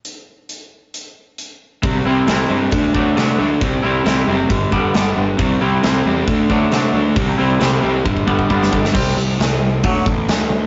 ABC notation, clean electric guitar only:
X:1
M:4/4
L:1/8
Q:1/4=135
K:Clyd
V:1 name="Clean electric guitar" clef=bass
z8 | z [C,G,CE] [C,G,CE] z2 [D,F,A,D] [D,F,A,D] z | z [C,G,CE] [C,G,CE] z2 [D,G,B,D] [D,G,B,D] z | z [C,G,CE] [C,G,CE] z2 [D,F,A,D] [D,F,A,D] z |
z [C,G,CE] [C,G,CE] z2 [D,G,B,D] [D,G,B,D] z | [C,G,C] [C,G,] [C,G,] [C,G,] [D,F,A,] [D,F,] [D,F,] [D,F,] |]